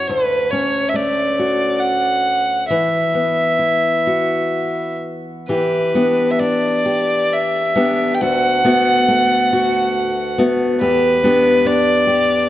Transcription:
0, 0, Header, 1, 3, 480
1, 0, Start_track
1, 0, Tempo, 873362
1, 52, Time_signature, 3, 2, 24, 8
1, 1973, Tempo, 941915
1, 2933, Tempo, 906344
1, 4373, Tempo, 873362
1, 5333, Tempo, 847458
1, 6778, End_track
2, 0, Start_track
2, 0, Title_t, "Fiddle"
2, 0, Program_c, 0, 110
2, 45, Note_on_c, 0, 71, 69
2, 278, Note_on_c, 0, 73, 67
2, 286, Note_off_c, 0, 71, 0
2, 492, Note_on_c, 0, 76, 52
2, 500, Note_off_c, 0, 73, 0
2, 528, Note_on_c, 0, 74, 70
2, 536, Note_off_c, 0, 76, 0
2, 988, Note_on_c, 0, 78, 69
2, 996, Note_off_c, 0, 74, 0
2, 1475, Note_off_c, 0, 78, 0
2, 1480, Note_on_c, 0, 76, 64
2, 2677, Note_off_c, 0, 76, 0
2, 2941, Note_on_c, 0, 71, 57
2, 3379, Note_on_c, 0, 76, 45
2, 3387, Note_off_c, 0, 71, 0
2, 3421, Note_on_c, 0, 74, 62
2, 3429, Note_off_c, 0, 76, 0
2, 3917, Note_on_c, 0, 76, 76
2, 3925, Note_off_c, 0, 74, 0
2, 4351, Note_on_c, 0, 79, 59
2, 4359, Note_off_c, 0, 76, 0
2, 4384, Note_on_c, 0, 78, 79
2, 4392, Note_off_c, 0, 79, 0
2, 5581, Note_off_c, 0, 78, 0
2, 5827, Note_on_c, 0, 71, 77
2, 6313, Note_on_c, 0, 74, 84
2, 6322, Note_off_c, 0, 71, 0
2, 6778, Note_off_c, 0, 74, 0
2, 6778, End_track
3, 0, Start_track
3, 0, Title_t, "Steel-string acoustic guitar"
3, 0, Program_c, 1, 25
3, 0, Note_on_c, 1, 61, 43
3, 0, Note_on_c, 1, 64, 46
3, 0, Note_on_c, 1, 66, 48
3, 51, Note_on_c, 1, 38, 63
3, 104, Note_off_c, 1, 64, 0
3, 287, Note_off_c, 1, 61, 0
3, 289, Note_on_c, 1, 61, 50
3, 517, Note_on_c, 1, 57, 50
3, 764, Note_off_c, 1, 66, 0
3, 766, Note_on_c, 1, 66, 51
3, 1483, Note_off_c, 1, 38, 0
3, 1486, Note_on_c, 1, 52, 57
3, 1528, Note_off_c, 1, 57, 0
3, 1533, Note_off_c, 1, 61, 0
3, 1728, Note_on_c, 1, 59, 42
3, 1972, Note_on_c, 1, 64, 44
3, 1988, Note_off_c, 1, 66, 0
3, 2218, Note_on_c, 1, 66, 42
3, 2940, Note_off_c, 1, 52, 0
3, 2942, Note_on_c, 1, 52, 56
3, 2943, Note_off_c, 1, 66, 0
3, 2946, Note_on_c, 1, 67, 46
3, 3180, Note_off_c, 1, 67, 0
3, 3183, Note_off_c, 1, 59, 0
3, 3185, Note_on_c, 1, 59, 43
3, 3186, Note_off_c, 1, 64, 0
3, 3188, Note_on_c, 1, 62, 45
3, 3191, Note_on_c, 1, 67, 48
3, 3423, Note_off_c, 1, 62, 0
3, 3426, Note_on_c, 1, 62, 47
3, 3659, Note_off_c, 1, 67, 0
3, 3665, Note_on_c, 1, 67, 48
3, 4139, Note_off_c, 1, 59, 0
3, 4141, Note_off_c, 1, 67, 0
3, 4142, Note_on_c, 1, 59, 49
3, 4145, Note_off_c, 1, 62, 0
3, 4147, Note_on_c, 1, 62, 51
3, 4150, Note_on_c, 1, 67, 52
3, 4379, Note_off_c, 1, 52, 0
3, 4380, Note_off_c, 1, 67, 0
3, 4385, Note_on_c, 1, 38, 65
3, 4388, Note_on_c, 1, 66, 57
3, 4620, Note_off_c, 1, 59, 0
3, 4622, Note_on_c, 1, 59, 49
3, 4623, Note_off_c, 1, 66, 0
3, 4624, Note_off_c, 1, 62, 0
3, 4626, Note_on_c, 1, 57, 43
3, 4630, Note_on_c, 1, 66, 52
3, 4856, Note_off_c, 1, 57, 0
3, 4862, Note_on_c, 1, 57, 51
3, 5101, Note_off_c, 1, 66, 0
3, 5108, Note_on_c, 1, 66, 54
3, 5579, Note_off_c, 1, 57, 0
3, 5581, Note_off_c, 1, 59, 0
3, 5582, Note_off_c, 1, 66, 0
3, 5584, Note_on_c, 1, 59, 53
3, 5588, Note_on_c, 1, 57, 53
3, 5591, Note_on_c, 1, 66, 59
3, 5820, Note_off_c, 1, 38, 0
3, 5822, Note_off_c, 1, 66, 0
3, 5827, Note_on_c, 1, 40, 64
3, 5830, Note_on_c, 1, 67, 57
3, 5868, Note_off_c, 1, 57, 0
3, 6059, Note_off_c, 1, 67, 0
3, 6066, Note_off_c, 1, 59, 0
3, 6068, Note_on_c, 1, 59, 52
3, 6071, Note_on_c, 1, 62, 54
3, 6076, Note_on_c, 1, 67, 59
3, 6301, Note_off_c, 1, 62, 0
3, 6303, Note_on_c, 1, 62, 57
3, 6533, Note_off_c, 1, 67, 0
3, 6540, Note_on_c, 1, 67, 58
3, 6778, Note_off_c, 1, 40, 0
3, 6778, Note_off_c, 1, 59, 0
3, 6778, Note_off_c, 1, 62, 0
3, 6778, Note_off_c, 1, 67, 0
3, 6778, End_track
0, 0, End_of_file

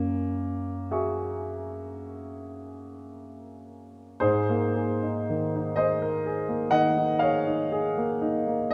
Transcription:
0, 0, Header, 1, 2, 480
1, 0, Start_track
1, 0, Tempo, 1098901
1, 1841, Tempo, 1056338
1, 1842, Time_signature, 9, 3, 24, 8
1, 2321, Tempo, 978793
1, 3281, Tempo, 1006711
1, 4001, End_track
2, 0, Start_track
2, 0, Title_t, "Grand piano"
2, 0, Program_c, 0, 0
2, 0, Control_c, 0, 64, 127
2, 0, Note_on_c, 0, 42, 39
2, 0, Note_on_c, 0, 58, 65
2, 383, Note_off_c, 0, 42, 0
2, 397, Note_on_c, 0, 66, 28
2, 400, Note_on_c, 0, 68, 32
2, 400, Note_on_c, 0, 76, 28
2, 403, Note_on_c, 0, 85, 32
2, 1110, Note_off_c, 0, 58, 0
2, 1821, Note_off_c, 0, 66, 0
2, 1823, Note_off_c, 0, 68, 0
2, 1823, Note_off_c, 0, 76, 0
2, 1824, Note_off_c, 0, 85, 0
2, 1835, Note_on_c, 0, 72, 68
2, 1839, Note_on_c, 0, 68, 50
2, 1843, Note_on_c, 0, 44, 44
2, 1850, Control_c, 0, 64, 0
2, 1923, Control_c, 0, 64, 127
2, 1967, Note_on_c, 0, 58, 35
2, 2079, Note_off_c, 0, 68, 0
2, 2085, Note_on_c, 0, 68, 35
2, 2159, Note_off_c, 0, 58, 0
2, 2209, Note_on_c, 0, 63, 34
2, 2276, Note_off_c, 0, 68, 0
2, 2334, Note_on_c, 0, 51, 31
2, 2400, Note_off_c, 0, 63, 0
2, 2461, Note_on_c, 0, 63, 33
2, 2525, Note_off_c, 0, 51, 0
2, 2559, Note_off_c, 0, 72, 0
2, 2560, Note_on_c, 0, 75, 64
2, 2566, Note_on_c, 0, 72, 53
2, 2573, Note_on_c, 0, 68, 34
2, 2645, Note_off_c, 0, 63, 0
2, 2689, Note_on_c, 0, 70, 33
2, 2759, Note_off_c, 0, 68, 0
2, 2804, Note_off_c, 0, 70, 0
2, 2806, Note_on_c, 0, 68, 36
2, 2915, Note_on_c, 0, 58, 33
2, 2993, Note_off_c, 0, 68, 0
2, 3019, Note_off_c, 0, 72, 0
2, 3020, Note_off_c, 0, 75, 0
2, 3025, Note_on_c, 0, 78, 80
2, 3027, Note_on_c, 0, 75, 57
2, 3030, Note_on_c, 0, 51, 36
2, 3109, Note_off_c, 0, 58, 0
2, 3155, Note_on_c, 0, 63, 34
2, 3228, Note_off_c, 0, 51, 0
2, 3258, Note_off_c, 0, 75, 0
2, 3263, Note_on_c, 0, 77, 63
2, 3272, Note_on_c, 0, 73, 46
2, 3274, Note_off_c, 0, 78, 0
2, 3276, Note_on_c, 0, 68, 34
2, 3351, Note_off_c, 0, 63, 0
2, 3395, Note_on_c, 0, 63, 32
2, 3470, Note_off_c, 0, 68, 0
2, 3516, Note_on_c, 0, 68, 39
2, 3591, Note_off_c, 0, 63, 0
2, 3636, Note_on_c, 0, 58, 34
2, 3711, Note_off_c, 0, 68, 0
2, 3752, Note_on_c, 0, 63, 35
2, 3832, Note_off_c, 0, 58, 0
2, 3874, Note_on_c, 0, 58, 29
2, 3949, Note_off_c, 0, 63, 0
2, 3978, Note_off_c, 0, 73, 0
2, 3984, Note_off_c, 0, 44, 0
2, 3985, Note_on_c, 0, 75, 74
2, 3993, Note_off_c, 0, 77, 0
2, 3998, Note_off_c, 0, 58, 0
2, 4001, Note_off_c, 0, 75, 0
2, 4001, End_track
0, 0, End_of_file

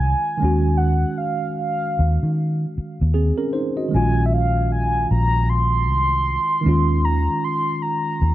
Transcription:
0, 0, Header, 1, 5, 480
1, 0, Start_track
1, 0, Tempo, 779221
1, 490, Time_signature, 4, 2, 24, 8
1, 5141, End_track
2, 0, Start_track
2, 0, Title_t, "Soft synth lead"
2, 0, Program_c, 0, 80
2, 0, Note_on_c, 0, 80, 112
2, 476, Note_on_c, 0, 78, 90
2, 485, Note_off_c, 0, 80, 0
2, 724, Note_on_c, 0, 77, 77
2, 734, Note_off_c, 0, 78, 0
2, 964, Note_off_c, 0, 77, 0
2, 967, Note_on_c, 0, 77, 80
2, 1424, Note_off_c, 0, 77, 0
2, 2430, Note_on_c, 0, 80, 95
2, 2611, Note_off_c, 0, 80, 0
2, 2623, Note_on_c, 0, 76, 61
2, 2669, Note_on_c, 0, 77, 86
2, 2679, Note_off_c, 0, 76, 0
2, 2900, Note_off_c, 0, 77, 0
2, 2909, Note_on_c, 0, 80, 92
2, 3123, Note_off_c, 0, 80, 0
2, 3147, Note_on_c, 0, 82, 104
2, 3383, Note_on_c, 0, 84, 127
2, 3392, Note_off_c, 0, 82, 0
2, 4341, Note_on_c, 0, 82, 101
2, 4350, Note_off_c, 0, 84, 0
2, 4584, Note_on_c, 0, 84, 98
2, 4593, Note_off_c, 0, 82, 0
2, 4817, Note_on_c, 0, 82, 83
2, 4827, Note_off_c, 0, 84, 0
2, 5141, Note_off_c, 0, 82, 0
2, 5141, End_track
3, 0, Start_track
3, 0, Title_t, "Tine electric piano"
3, 0, Program_c, 1, 4
3, 0, Control_c, 1, 64, 127
3, 0, Note_on_c, 1, 51, 56
3, 0, Note_on_c, 1, 56, 53
3, 0, Note_on_c, 1, 61, 58
3, 0, Note_on_c, 1, 65, 68
3, 219, Note_off_c, 1, 51, 0
3, 226, Note_off_c, 1, 56, 0
3, 231, Note_on_c, 1, 51, 65
3, 233, Note_off_c, 1, 61, 0
3, 241, Note_off_c, 1, 65, 0
3, 245, Note_on_c, 1, 56, 62
3, 258, Control_c, 1, 64, 0
3, 259, Note_on_c, 1, 61, 64
3, 275, Note_on_c, 1, 66, 80
3, 376, Control_c, 1, 64, 127
3, 1910, Note_off_c, 1, 61, 0
3, 1918, Note_off_c, 1, 66, 0
3, 1935, Note_on_c, 1, 68, 69
3, 1939, Note_on_c, 1, 60, 57
3, 2068, Note_off_c, 1, 68, 0
3, 2071, Note_off_c, 1, 60, 0
3, 2080, Note_on_c, 1, 70, 68
3, 2083, Note_on_c, 1, 61, 59
3, 2136, Note_off_c, 1, 51, 0
3, 2143, Note_off_c, 1, 56, 0
3, 2168, Note_off_c, 1, 70, 0
3, 2170, Note_off_c, 1, 61, 0
3, 2174, Note_on_c, 1, 72, 63
3, 2180, Note_on_c, 1, 63, 53
3, 2308, Note_off_c, 1, 72, 0
3, 2311, Note_off_c, 1, 63, 0
3, 2322, Note_on_c, 1, 75, 59
3, 2324, Note_on_c, 1, 66, 50
3, 2394, Note_on_c, 1, 51, 58
3, 2409, Note_on_c, 1, 56, 56
3, 2417, Control_c, 1, 64, 0
3, 2427, Note_on_c, 1, 61, 54
3, 2441, Note_on_c, 1, 65, 69
3, 2537, Control_c, 1, 64, 127
3, 2545, Note_off_c, 1, 75, 0
3, 2547, Note_off_c, 1, 66, 0
3, 4057, Note_off_c, 1, 51, 0
3, 4064, Note_off_c, 1, 56, 0
3, 4073, Note_on_c, 1, 51, 68
3, 4074, Note_off_c, 1, 61, 0
3, 4080, Note_off_c, 1, 65, 0
3, 4085, Note_on_c, 1, 56, 62
3, 4098, Control_c, 1, 64, 0
3, 4102, Note_on_c, 1, 61, 69
3, 4117, Note_on_c, 1, 65, 77
3, 4210, Control_c, 1, 64, 127
3, 5141, Note_off_c, 1, 51, 0
3, 5141, Note_off_c, 1, 56, 0
3, 5141, Note_off_c, 1, 61, 0
3, 5141, Note_off_c, 1, 65, 0
3, 5141, End_track
4, 0, Start_track
4, 0, Title_t, "Fingered electric bass"
4, 0, Program_c, 2, 33
4, 0, Note_on_c, 2, 36, 89
4, 82, Note_off_c, 2, 36, 0
4, 264, Note_on_c, 2, 39, 99
4, 636, Note_off_c, 2, 39, 0
4, 1226, Note_on_c, 2, 39, 78
4, 1332, Note_off_c, 2, 39, 0
4, 1373, Note_on_c, 2, 51, 77
4, 1630, Note_off_c, 2, 51, 0
4, 1856, Note_on_c, 2, 39, 85
4, 2036, Note_off_c, 2, 39, 0
4, 2430, Note_on_c, 2, 34, 98
4, 3115, Note_off_c, 2, 34, 0
4, 3147, Note_on_c, 2, 34, 87
4, 3625, Note_off_c, 2, 34, 0
4, 3625, Note_on_c, 2, 36, 93
4, 3921, Note_off_c, 2, 36, 0
4, 4104, Note_on_c, 2, 39, 97
4, 4477, Note_off_c, 2, 39, 0
4, 5061, Note_on_c, 2, 39, 90
4, 5141, Note_off_c, 2, 39, 0
4, 5141, End_track
5, 0, Start_track
5, 0, Title_t, "Muted fingered electric bass strokes"
5, 1711, Note_on_c, 9, 29, 49
5, 1773, Note_off_c, 9, 29, 0
5, 5141, End_track
0, 0, End_of_file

